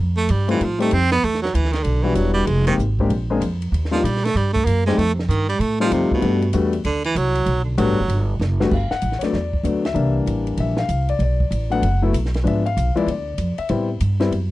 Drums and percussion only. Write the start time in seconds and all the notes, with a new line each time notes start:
0.29 hi-hat pedal, ride
0.49 ride
0.61 ride
0.80 ride
0.91 hi-hat pedal, ride
1.11 snare, ride
1.24 ride
1.35 snare
1.45 snare
1.55 hi-hat pedal, ride
1.65 snare
1.73 snare, ride
1.84 ride
2.15 hi-hat pedal, ride
2.47 ride
2.67 snare, ride
2.79 hi-hat pedal
2.99 kick
3.10 ride
3.41 hi-hat pedal, ride
3.62 ride
3.74 ride
3.85 snare
3.95 snare
4.05 hi-hat pedal, ride
4.17 snare
4.25 snare, ride
4.37 ride
4.56 kick
4.67 hi-hat pedal, ride
4.88 snare
4.99 ride
5.19 snare
5.30 hi-hat pedal, ride
5.49 ride
5.61 ride
5.81 snare
5.92 hi-hat pedal, ride
6.12 kick
6.22 ride
6.42 ride
6.53 hi-hat pedal, ride
6.73 ride
6.84 ride
7.04 ride
7.16 hi-hat pedal, ride
7.35 ride
7.46 ride
7.78 hi-hat pedal, ride
8.09 ride
8.41 snare, hi-hat pedal
8.61 snare
8.71 kick, crash
8.91 snare
9.02 hi-hat pedal, ride
9.12 snare
9.21 snare, ride
9.33 snare
9.53 kick
9.65 hi-hat pedal, ride
9.85 snare, ride
9.96 ride
10.27 hi-hat pedal, ride
10.47 ride
10.57 ride
10.77 snare
10.89 hi-hat pedal, ride
11.09 ride
11.20 ride
11.40 kick
11.52 hi-hat pedal, ride
11.72 ride
11.83 ride
12.14 hi-hat pedal, ride
12.26 snare
12.34 snare, ride
12.47 ride
12.66 ride
12.77 hi-hat pedal, ride
12.97 ride
13.08 ride
13.38 hi-hat pedal, ride
13.58 ride
13.69 ride
14.00 hi-hat pedal, ride
14.20 snare, ride
14.32 ride